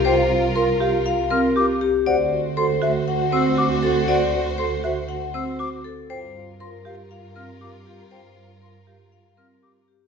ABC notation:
X:1
M:4/4
L:1/8
Q:1/4=119
K:Dm
V:1 name="Flute"
g z c' f z f' d' z | ^f z c' e z e' d' z | ^f z c' e z e' d' z | g z c' f z f' d' z |
g z c' f z f' d' z |]
V:2 name="Vibraphone"
c z B z f B z G | d z c z ^f c z A | d z c z ^f c z A | c z B z f B z G |
c z B z f B z G |]
V:3 name="Violin section"
[FB]6- [FB] z | [^Fc]8- | [^Fc]6- [Fc] z | [FB]8- |
[FB]6- [FB] z |]
V:4 name="Marimba"
c z B G z C G z | c z A ^F z C F z | c z A ^F z C F z | c z B G z C G z |
c z B G z C G z |]
V:5 name="French horn"
F F F F F F F z | ^F F F F F F F F | ^F F F F F F F z | F F F F F F F F |
F F F F F F F z |]
V:6 name="Double bass section" clef=bass
C,,8 | D,,8- | D,,8 | G,,8- |
G,,8 |]